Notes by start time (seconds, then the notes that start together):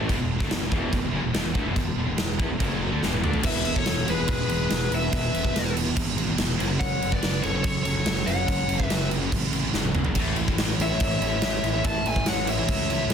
0.08 E1 E2 B2, kick, crash
0.18 E1 E2 B2
0.39 D2 D3 A3, kick, snare
0.50 E1 E2 B2, snare, crash
0.60 E1 E2 B2
0.71 E1 E2 B2 E3, kick
0.93 E1 E2 B2, kick, crash
1.03 E1 E2 B2
1.13 F#1 F#2 C#3
1.24 E1 E2 B2
1.33 E1 E2 B2, snare, crash
1.44 E1 E2 B2
1.55 D2 D3 A3, kick
1.65 E1 E2 B2
1.76 E1 E2 B2, kick, crash
1.97 E1 E2 B2
2.07 E1 E2 B2
2.18 E1 E2 B2, snare, crash
2.39 E2 E3 B3, kick
2.49 E1 E2 B2
2.59 F#1 F#2 C#3 F#3, kick, crash
2.91 D2 D3 A3
3.02 E1 E2 B2 E3, snare
3.13 high tom
3.23 D2 D3 A3 D4, mid tom
3.33 floor tom
3.43 E1 E2 B2 E3 B4 E5, kick, crash
3.65 E2 B2, crash
3.74 E2 B2 A4 C#5, kick
3.86 E1 E2 B2, snare, crash
4.07 E1 E2 B2 E3 G#4 B4, crash
4.19 E2 B2
4.28 E1 E2 B2 G#4, kick, crash
4.32 B4
4.49 E1 E2 B2 G#4 B4, crash
4.60 E2 B2
4.68 E1 E2 B2, snare, crash
4.90 E1 E2 B2, crash
4.94 B4 E5
5.00 E2 B2
5.11 E1 E2 B2 E3, kick, crash
5.33 E1 E2 B2, crash
5.43 E2 B2, kick
5.54 E1 E2 B2, snare, crash
5.75 E2 B2 E3, crash
5.84 E2 B2
5.96 G#1 E2 B2, kick, crash
6.17 E2 B2, crash
6.27 E2 B2
6.37 F1 E2 B2, snare, crash
6.58 F#1 F#2 C#3 F#3, crash
6.70 F#2 C#3
6.79 F#1 F#2 C#3 C#5 F#5, kick, crash
7.02 F#2 C#3, crash
7.11 F#2 C#3 B4 D5, kick
7.21 F#1 F#2 C#3, snare, crash
7.26 F#3
7.43 F#1 F#2 C#3 A4 C#5, crash
7.54 F#2 C#3
7.63 F#1 F#2 C#3 A4 C#5, kick, crash
7.83 F#1 F#2 C#3 A4 C#5, crash
7.96 F#2 C#3
8.06 F#1 F#2 C#3, snare, crash
8.26 F#1 F#2 C#3 F#3 C#5 F#5, crash
8.38 F#2 C#3
8.46 F#1 F#2 C#3, kick, crash
8.68 F#1 F#2 C#3, crash
8.80 F#2 C#3, kick
8.84 B4 E5
8.89 F#1 F#2 C#3 F#3, snare, crash
9.11 F#2 C#3, crash
9.21 F#2 C#3
9.32 A1 F#2 C#3, kick, crash
9.53 F#2 C#3, crash
9.64 F#2 C#3
9.74 F#1 F#2 C#3, snare
9.85 high tom
9.95 F#1 F#2 C#3, mid tom
10.04 F#2 C#3, floor tom
10.15 A1 A2 E3 A3, kick, crash
10.36 A2 E3, crash
10.48 A2 E3, kick
10.58 A1 A2 E3, snare, crash
10.79 A1 A2 E3 A3 C#5 E5, crash
10.91 A2 E3
11.00 A1 A2 E3, kick, crash
11.21 A1 A2 E3, crash
11.32 A2 E3
11.41 A1 A2 E3, snare, crash
11.63 A1 A2 E3, crash
11.73 A2 E3
11.84 A1 A2 E3 A3 E5 A5, kick, crash
12.05 A1 A2 E3 E5 G#5, crash
12.16 A2 E3, kick
12.25 A1 A2 E3 C#5 F#5, snare, crash
12.46 A2 E3 A3 C#5 E5, crash
12.50 A2 E3
12.58 A2 E3
12.68 C#2 A2 E3, kick, crash
12.89 A2 E3, crash
13.00 A2 E3
13.10 A2 E3, snare, crash